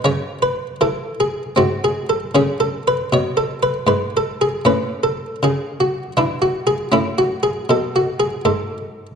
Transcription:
<<
  \new Staff \with { instrumentName = "Harpsichord" } { \time 3/4 \key cis \minor \tempo 4 = 79 << { cis''8 b'8 a'8 gis'8 \tuplet 3/2 { fis'8 gis'8 a'8 } | \tuplet 3/2 { gis'8 a'8 b'8 cis''8 a'8 b'8 b'8 a'8 gis'8 } | b'8 a'8 gis'8 fis'8 \tuplet 3/2 { e'8 fis'8 gis'8 } | \tuplet 3/2 { e'8 fis'8 gis'8 a'8 fis'8 gis'8 } a'8 r8 | } \\ { cis'2 bis4 | cis'2. | cis'2 d'4 | cis'2. | } >> }
  \new Staff \with { instrumentName = "Harpsichord" } { \clef bass \time 3/4 \key cis \minor cis4 e4 gis,4 | cis4 b,4 gis,4 | a,4 cis4 e4 | a,4 b,4 gis,4 | }
>>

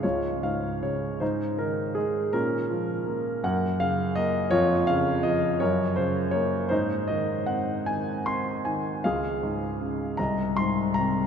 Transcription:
<<
  \new Staff \with { instrumentName = "Grand piano" } { \time 6/8 \key des \major \tempo 4. = 53 << { des''8 f''8 des''8 c''8 bes'8 aes'8 | bes'4. ges''8 f''8 ees''8 | des''8 f''8 ees''8 des''8 c''8 des''8 | c''8 ees''8 ges''8 aes''8 c'''8 aes''8 |
f''4. bes''8 c'''8 bes''8 | } \\ { f'4. ees'4. | des'4. bes'4. | f'4. bes'4. | ees'4. r4. |
aes'4. ees''4. | } >> }
  \new Staff \with { instrumentName = "Grand piano" } { \clef bass \time 6/8 \key des \major des,8 aes,8 des8 aes,8 ees8 aes8 | bes,8 f8 bes8 ges,8 des8 bes8 | f,8 des8 f8 ges,8 des8 bes8 | aes,8 ees8 c'8 ees8 c'8 ees8 |
des,8 aes,8 des8 c,8 aes,8 c8 | }
>>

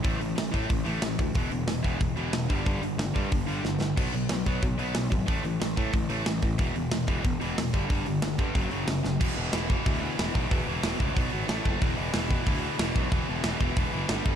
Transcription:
<<
  \new Staff \with { instrumentName = "Overdriven electric guitar" } { \clef bass \time 4/4 \key e \dorian \tempo 4 = 184 <a, e a>8 <a, e>8 <a, e>8 <a, e a>8 <a, e>8 <a, e a>8 <a, e>8 <a, e>8 | <e, b, e>8 <e, b,>8 <e, b,>8 <e, b, e>8 <e, b,>8 <e, b, e>8 <e, b,>8 <g, d g>8 | <g, d g>8 <g, d>8 <g, d>8 <g, d g>8 <g, d>8 <g, d g>8 <g, d>8 <g, d>8 | <b, fis b>8 <b, fis>8 <b, fis>8 <b, fis b>8 <b, fis>8 <b, fis b>8 <b, fis>8 <b, fis>8 |
<a, e a>8 <a, e>8 <a, e>8 <a, e a>8 <a, e>8 <a, e a>8 <a, e>8 <a, e>8 | <e, b, e>8 <e, b,>8 <e, b,>8 <e, b, e>8 <e, b,>8 <e, b, e>8 <e, b,>8 <g, d g>8 | <g, d g>8 <g, d>8 <g, d>8 <g, d g>8 <fis, cis fis>8 <fis, cis fis>8 <fis, cis>8 <fis, cis>8 | <e, b, e>8 <e, b, e>8 <e, b, e>8 <e, b, e>8 <e, b, e>8 <e, b, e>8 <e, b, e>8 <e, b, e>8 |
<e, b, e>8 <e, b, e>8 <e, b, e>8 <e, b, e>8 <b, fis b>8 <b, fis b>8 <a, e a>8 <a, e a>8 | <e, b, e>8 <e, b, e>8 <e, b, e>8 <e, b, e>8 <e, b, e>8 <e, b, e>8 <e, b, e>8 <e, b, e>8 | <e, b, e>8 <e, b, e>8 <e, b, e>8 <e, b, e>8 <e, b, e>8 <e, b, e>8 <g, d g>8 <g, d g>8 | }
  \new Staff \with { instrumentName = "Picked electric bass" } { \clef bass \time 4/4 \key e \dorian a,,8 a,,8 a,,8 a,8 a,,8 a,,8 a,,8 d,8 | e,,8 e,,8 e,,8 e,,8 e,,8 e,,8 e,,8 g,,8 | g,,8 g,,8 g,,8 g,8 g,,8 g,,8 g,,8 g,,8 | b,,8 b,,8 b,,8 b,,8 b,,8 b,,8 b,,8 gis,,8 |
a,,8 a,,8 a,,8 a,8 a,,8 a,,8 a,,8 a,,8 | e,,8 e,,8 e,,8 e,,8 e,,8 e,,8 e,,8 g,,8 | g,,8 g,,8 g,,8 g,8 fis,,8 fis,,8 fis,,8 fis,,8 | e,,8 e,,8 e,,4 d,4 e,,8 b,,8 |
e,,8 e,,8 e,,8 cis,8 b,,8 gis,,8 a,,8 fis,,8 | e,,8 e,,8 e,,4 d,4 e,,8 b,,8 | e,,8 e,,8 e,,8 e,,8 e,,8 fis,,8 g,,8 g,,8 | }
  \new DrumStaff \with { instrumentName = "Drums" } \drummode { \time 4/4 <hho bd>8 hho8 <hho sn>8 <hho bd>8 <hho bd>8 hho8 <hho sn>8 <hho bd>8 | <hho bd>8 hho8 <hho sn>8 <hho bd>8 <hho bd>8 hho8 <hho sn>8 <hho bd>8 | <hho bd>8 hho8 <hho sn>8 <hho bd>8 <hho bd>8 hho8 sn8 sn8 | <cymc hho bd>8 hho8 <hho sn>8 <hho bd>8 <hho bd>8 hho8 <hho sn>8 <hho bd>8 |
<hho bd>8 hho8 <hho sn>8 <hho bd>8 <hho bd>8 hho8 <hho sn>8 <hho bd>8 | <hho bd>8 hho8 <hho sn>8 <hho bd>8 <hho bd>8 hho8 <hho sn>8 <hho bd>8 | <hho bd>8 hho8 <hho sn>8 <hho bd>8 <hho bd>8 hho8 <hho sn>8 sn8 | <cymc bd>4 <hho sn>8 bd8 <hho bd>4 <hho sn>8 bd8 |
<hho bd>4 <hho sn>8 bd8 <hho bd>4 <hho sn>8 bd8 | <hho bd>4 <hho sn>8 bd8 <hho bd>4 <hho sn>8 bd8 | <hho bd>4 <hho sn>8 bd8 <hho bd>4 sn8 bd8 | }
>>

